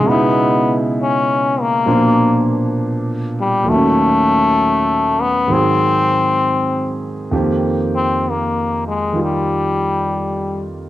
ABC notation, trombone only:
X:1
M:4/4
L:1/8
Q:"Swing" 1/4=66
K:G#phr
V:1 name="Trombone"
B, z C ^A,2 z2 =G, | A,3 B, ^B,3 z | [K:Cphr] z C B, A, G,3 z |]